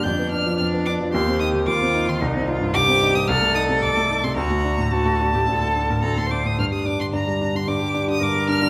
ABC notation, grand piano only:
X:1
M:4/4
L:1/16
Q:1/4=110
K:Gm
V:1 name="Grand piano" clef=bass
F,, =B, D F, F,, B, D F, E,, C E E, E,, C E E, | C,, C E G,, C,, C E G,, C,, A, E C, C,, A, E C, | D,, A, D A,, D,, A, D A,, D,, A, D A,, D,, A, D A,, | G,, G, D D, G,, G, D D, G,, G, D D, G,, G, D D, |]